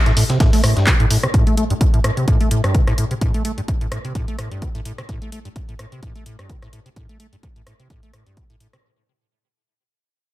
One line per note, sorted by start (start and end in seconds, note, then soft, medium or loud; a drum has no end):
0.06 0.12 A2 medium
0.06 snare medium
0.06 closed hi-hat soft
0.17 0.24 A2 medium
0.17 closed hi-hat medium
0.17 open hi-hat loud
0.30 0.38 C3 medium
0.30 snare medium
0.30 closed hi-hat soft
0.40 0.51 A2 loud
0.40 kick loud
0.40 snare loud
0.40 closed hi-hat medium
0.53 0.62 A3 medium
0.53 snare soft
0.53 open hi-hat medium
0.64 0.74 A2 medium
0.64 cross-stick medium
0.64 closed hi-hat medium
0.64 open hi-hat loud
0.77 0.89 G2 medium
0.77 snare soft
0.77 closed hi-hat soft
0.87 0.94 C3 medium
0.87 kick loud
0.87 clap loud
0.87 closed hi-hat medium
1.00 1.06 A2 loud
1.00 closed hi-hat soft
1.10 1.18 A2 medium
1.10 closed hi-hat medium
1.10 open hi-hat loud
1.23 1.27 C3 medium
1.23 cross-stick medium
1.23 closed hi-hat soft
1.34 1.45 A2 loud
1.34 kick loud
1.34 closed hi-hat medium
1.47 1.56 A3 medium
1.47 closed hi-hat soft
1.57 1.64 A3 medium
1.57 closed hi-hat medium
1.70 1.74 G2 medium
1.70 closed hi-hat soft
1.81 1.85 A2 medium
1.81 kick loud
1.81 closed hi-hat medium
1.94 2.00 A2 medium
1.94 closed hi-hat soft
2.04 2.11 A2 medium
2.04 cross-stick medium
2.04 closed hi-hat medium
2.17 2.26 C3 medium
2.17 closed hi-hat soft
2.28 2.38 A2 loud
2.28 kick loud
2.28 closed hi-hat medium
2.41 2.49 A3 medium
2.41 closed hi-hat soft
2.51 2.62 A2 medium
2.51 closed hi-hat medium
2.64 2.76 G2 medium
2.64 cross-stick medium
2.64 closed hi-hat soft
2.75 2.82 C3 medium
2.75 kick loud
2.75 closed hi-hat medium
2.87 2.93 A2 loud
2.87 cross-stick medium
2.87 closed hi-hat soft
2.98 3.05 A2 medium
2.98 closed hi-hat medium
3.11 3.14 C3 medium
3.11 closed hi-hat soft
3.21 3.32 A2 loud
3.21 kick loud
3.21 closed hi-hat medium
3.34 3.43 A3 medium
3.34 closed hi-hat soft
3.45 3.52 A3 medium
3.45 closed hi-hat medium
3.58 3.61 G2 medium
3.58 closed hi-hat soft
3.68 3.73 A2 medium
3.68 kick loud
3.68 closed hi-hat medium
3.81 3.87 A2 medium
3.81 closed hi-hat soft
3.92 3.99 A2 medium
3.92 cross-stick medium
3.92 closed hi-hat medium
4.05 4.13 C3 medium
4.05 closed hi-hat soft
4.15 4.26 A2 loud
4.15 kick loud
4.15 closed hi-hat medium
4.28 4.37 A3 medium
4.28 closed hi-hat soft
4.39 4.49 A2 medium
4.39 cross-stick medium
4.39 closed hi-hat medium
4.51 4.63 G2 medium
4.51 closed hi-hat soft
4.62 4.69 C3 medium
4.62 kick loud
4.62 closed hi-hat medium
4.75 4.81 A2 loud
4.75 closed hi-hat soft
4.85 4.93 A2 medium
4.85 closed hi-hat medium
4.98 5.02 C3 medium
4.98 cross-stick medium
4.98 closed hi-hat soft
5.09 5.20 A2 loud
5.09 kick loud
5.09 closed hi-hat medium
5.22 5.31 A3 medium
5.22 closed hi-hat soft
5.32 5.39 A3 medium
5.32 closed hi-hat medium
5.45 5.49 G2 medium
5.45 closed hi-hat soft
5.56 5.60 A2 medium
5.56 kick loud
5.56 closed hi-hat medium
5.69 5.74 A2 medium
5.69 closed hi-hat soft
5.79 5.86 A2 medium
5.79 cross-stick medium
5.79 closed hi-hat medium
5.92 6.01 C3 medium
5.92 closed hi-hat soft
6.03 6.13 A2 loud
6.03 kick loud
6.03 closed hi-hat medium
6.16 6.24 A3 medium
6.16 closed hi-hat soft
6.26 6.37 A2 medium
6.26 closed hi-hat medium
6.39 6.51 G2 medium
6.39 cross-stick medium
6.39 closed hi-hat soft
6.50 6.57 C3 medium
6.50 kick loud
6.50 closed hi-hat medium
6.62 6.68 A2 loud
6.62 cross-stick medium
6.62 closed hi-hat soft
6.73 6.80 A2 medium
6.73 closed hi-hat medium
6.86 6.89 C3 medium
6.86 closed hi-hat soft
6.96 7.07 A2 loud
6.96 kick loud
6.96 closed hi-hat medium
7.09 7.18 A3 medium
7.09 closed hi-hat soft
7.20 7.27 A3 medium
7.20 closed hi-hat medium
7.33 7.36 G2 medium
7.33 closed hi-hat soft
7.43 7.48 A2 medium
7.43 kick loud
7.43 closed hi-hat medium
7.56 7.62 A2 medium
7.56 closed hi-hat soft
7.67 7.74 A2 medium
7.67 cross-stick medium
7.67 closed hi-hat loud
7.80 7.88 C3 medium
7.80 closed hi-hat soft
7.90 8.01 A2 loud
7.90 kick loud
7.90 closed hi-hat medium
8.03 8.12 A3 medium
8.03 closed hi-hat soft
8.14 8.24 A2 medium
8.14 cross-stick medium
8.14 closed hi-hat medium
8.26 8.39 G2 medium
8.26 closed hi-hat soft
8.37 8.44 C3 medium
8.37 kick loud
8.37 closed hi-hat medium
8.50 8.56 A2 medium
8.50 closed hi-hat soft
8.60 8.68 A2 medium
8.60 closed hi-hat loud
8.73 8.77 C3 medium
8.73 cross-stick medium
8.73 closed hi-hat soft